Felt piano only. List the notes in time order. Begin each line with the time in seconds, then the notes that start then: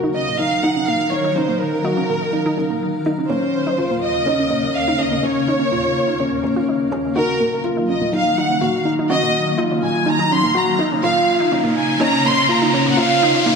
Already playing: F#4
0.39 D#4
0.63 D#4
1.12 D#4
1.36 D#4
1.84 F#4
2.33 D#4
2.57 D#4
3.06 D#4
3.29 C#4
3.78 F4
4.26 C#4
4.50 C#4
4.98 C#4
5.23 C#4
5.72 F4
6.20 C#4
6.44 C#4
6.92 C#4
7.16 F#4
7.64 F4
8.13 D#4
8.61 F#4
8.85 D#4
9.10 F#4
9.57 F4
10.06 D#4
10.55 F#4
10.79 D#4
11.03 F4
11.52 D#4
12.01 C#4
12.49 F4
12.74 C#4
12.97 F4
13.46 D#4